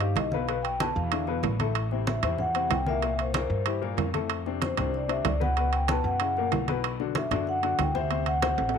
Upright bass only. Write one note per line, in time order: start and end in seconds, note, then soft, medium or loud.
0.00 0.12 G2 medium
0.16 0.90 B1 medium
0.96 1.40 E2 loud
1.43 2.17 A1 medium
2.23 2.67 E2 loud
2.70 3.44 C2 medium
3.50 3.94 G2 medium
3.97 4.71 F2 medium
4.78 5.22 C2 loud
5.25 5.99 C#2 medium
6.04 6.48 F#2 loud
6.51 7.25 B1 medium
7.31 7.75 F#2 medium
7.79 8.52 D2 medium
8.58 8.78 A1 loud